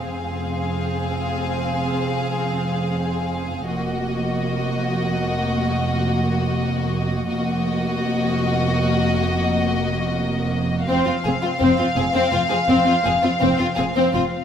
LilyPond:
<<
  \new Staff \with { instrumentName = "Violin section" } { \time 5/4 \key f \phrygian \tempo 4 = 83 f''1~ f''4 | ees''1~ ees''4 | ees''1~ ees''4 | f''1~ f''4 | }
  \new Staff \with { instrumentName = "Violin section" } { \time 5/4 \key f \phrygian aes'1~ aes'4 | ges'1~ ges'4 | ges'1~ ges'4 | c'16 f'16 aes'16 f'16 c'16 f'16 aes'16 c'16 f'16 aes'16 c'16 f'16 aes'16 f'16 c'16 f'16 aes'16 c'16 f'16 r16 | }
  \new Staff \with { instrumentName = "Viola section" } { \time 5/4 \key f \phrygian c'1~ c'4 | bes1~ bes4 | bes1~ bes4 | c'16 c'16 c'16 c'16 c'16 c'16 c'16 c'16 c'16 c'16 c'16 c'16 c'16 c'16 c'16 c'16 c'16 c'16 c'16 r16 | }
  \new Staff \with { instrumentName = "Cello section" } { \clef bass \time 5/4 \key f \phrygian f,1~ f,4 | f,1~ f,4 | f,1~ f,4 | f,16 f,16 f,16 f,16 f,16 f,16 f,16 f,16 f,16 f,16 f,16 f,16 f,16 f,16 f,16 f,16 f,16 f,16 f,16 r16 | }
  \new Staff \with { instrumentName = "Double bass section" } { \clef bass \time 5/4 \key f \phrygian f,,1~ f,,4 | f,,1~ f,,4 | f,,1~ f,,4 | f,,16 r16 f,,16 r16 f,,16 r16 f,,16 r16 f,,16 r16 f,,16 r16 f,,16 r16 f,,16 r16 f,,16 r16 f,,16 r16 | }
>>